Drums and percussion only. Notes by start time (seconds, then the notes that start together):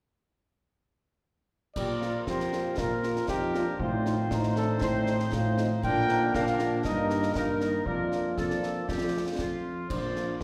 1.76 concert bass drum, crash
2.02 snare
2.27 concert bass drum, snare
2.40 snare
2.53 snare
2.78 concert bass drum, snare
3.04 snare
3.16 snare
3.28 concert bass drum, snare
3.55 snare
3.79 concert bass drum
4.06 snare
4.31 concert bass drum, snare
4.43 snare
4.56 snare
4.81 concert bass drum, snare
5.07 snare
5.20 snare
5.32 concert bass drum, snare
5.58 snare
5.83 concert bass drum, crash
6.09 snare
6.34 concert bass drum, snare
6.47 snare
6.59 snare
6.85 concert bass drum, snare
7.10 snare
7.23 snare
7.35 concert bass drum, snare
7.61 snare
7.86 concert bass drum
8.12 snare
8.38 concert bass drum, snare
8.50 snare
8.63 snare
8.89 concert bass drum, snare
9.39 concert bass drum, snare
9.90 concert bass drum, crash
10.16 snare